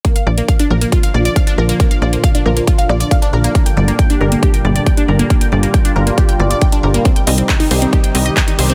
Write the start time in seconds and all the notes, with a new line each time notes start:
0.04 A#2 D3 F3 A#3 D4 F4, kick, closed hi-hat
0.16 F5, closed hi-hat
0.27 A#1 D5
0.38 A#3, closed hi-hat
0.48 F5, kick, closed hi-hat
0.59 D4, closed hi-hat
0.70 A#1 A#4
0.81 A#3, closed hi-hat
0.92 F4, kick, closed hi-hat
1.03 F5, closed hi-hat
1.14 A#1 D5
1.25 D5, closed hi-hat
1.36 F5, kick, closed hi-hat
1.47 D4, closed hi-hat
1.58 A#1 A#4
1.69 A#3, closed hi-hat
1.80 A#3, kick, closed hi-hat
1.91 F5, closed hi-hat
2.02 A#1 D5
2.13 A#3, closed hi-hat
2.24 F5, kick, closed hi-hat
2.35 D4, closed hi-hat
2.46 A#1 A#4
2.56 A#3, closed hi-hat
2.67 F4, kick, closed hi-hat
2.78 F5, closed hi-hat
2.89 A#1 D5
3.00 D5, closed hi-hat
3.11 F5, kick, closed hi-hat
3.22 D4, closed hi-hat
3.33 A#1 A#4
3.44 A#3, closed hi-hat
3.55 A#2 G3 A#3 G4, kick, closed hi-hat
3.66 G5, closed hi-hat
3.77 G1 D5
3.88 A#3, closed hi-hat
3.99 G5, kick, closed hi-hat
4.10 D4, closed hi-hat
4.21 G1 A#4
4.32 A#3, closed hi-hat
4.43 G4, kick, closed hi-hat
4.54 G5, closed hi-hat
4.65 G1 D5
4.76 D5, closed hi-hat
4.86 G5, kick, closed hi-hat
4.97 D4, closed hi-hat
5.08 G1 A#4
5.19 A#3, closed hi-hat
5.30 A#3 F4, kick, closed hi-hat
5.41 G5, closed hi-hat
5.52 G1 D5
5.63 A#3, closed hi-hat
5.74 G5, kick, closed hi-hat
5.85 D4, closed hi-hat
5.96 G1 A#4
6.07 A#3, closed hi-hat
6.18 G4, kick, closed hi-hat
6.29 G5, closed hi-hat
6.40 G1 D5
6.50 D5, closed hi-hat
6.61 G5, kick, closed hi-hat
6.72 D4, closed hi-hat
6.83 G1 A#4
6.94 A#3, closed hi-hat
7.05 C3 D#3 C4 D#4 G4, kick, closed hi-hat
7.16 G5, closed hi-hat
7.27 C2 D#5, open hi-hat
7.38 C4, closed hi-hat
7.49 G5, kick, clap, closed hi-hat
7.60 D#4, open hi-hat
7.71 C2 C5, open hi-hat
7.82 C4, closed hi-hat
7.93 G4, kick, closed hi-hat
8.04 G5, closed hi-hat
8.15 C2 D#5, open hi-hat
8.26 D#5, closed hi-hat
8.37 G5, kick, clap, closed hi-hat
8.47 D#4, closed hi-hat
8.59 C2 C5, open hi-hat
8.70 C4, closed hi-hat